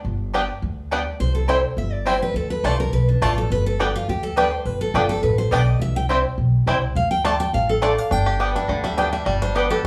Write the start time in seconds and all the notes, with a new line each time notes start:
0.05 G1
0.34 G3 B3 D4 G4 D5 G5
0.62 D2
0.91 G3 B3 D4 G4 D5 G5
1.20 C2 C5
1.35 A4
1.48 G3 C4 E4 C5 G5
1.77 G1 E5
1.93 D5
2.06 G3 C4 E4 C5 G5
2.22 B4
2.34 D2 A4
2.50 B4
2.64 C2 A3 D4 F4 C5 D5 A5
2.80 A#4
2.92 B1 B4
3.09 D4
3.21 A1 A3 D4 F4 D5 A5
3.38 A4
3.50 G1 B4
3.66 A4
3.79 G3 B3 D4 G4 D5 G5
3.96 F4
4.08 D2 G4
4.23 A4
4.36 G3 B3 D4 G4 B4 D5 G5
4.51 C5
4.65 G1 B4
4.81 A4
4.94 G1 G3 B3 D4 F4 G4 D5 G5
5.09 A4
5.23 A1 B4
5.38 C5
5.51 B1 G3 B3 D4 G4 D5 G5
5.66 D#5
5.80 C2 E5
5.96 G5
6.09 G3 C4 E4 C5 G5
6.38 B1
6.66 C2 G3 C4 E4 C5 G5
6.95 D2 F5
7.11 G5
7.24 A3 D4 F4 D5 A5
7.40 G5
7.53 A1 F5
7.69 A4
7.82 A3 D4 F4 D5 A5
7.98 F5
8.11 G1 D4 G5
8.26 G4
8.40 B3 G4 D5 G5
8.55 D4 E5
8.68 D2 D3 D5
8.84 G3 E5
8.98 B3 D4 G4 D5 G5
9.13 G3 E5
9.26 G1 G3 D5
9.42 D4 C5
9.55 B3 G4 B4 D5 G5
9.70 G4 A4
9.84 D2